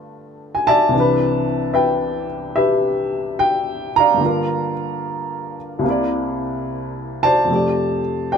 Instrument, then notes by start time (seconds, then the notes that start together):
upright piano
Already playing: G2 D3 A3 F4 B4
0.55 G#5
0.67 D5 E5 A5
0.89 C2 C3
0.94 E3 D4
1.00 B4
1.73 B4 E5 G5
2.56 G4 B4 E5
3.39 G5
3.96 D5 F5 A#5
4.14 G2 D3
4.20 A#3 F4
4.26 A#4
5.79 C2 C3
5.84 A#3 E4
5.90 D5
7.23 C5 D5 A5
7.45 F2 C3
7.50 A3 G4
7.55 D5
8.32 C5 D5 G5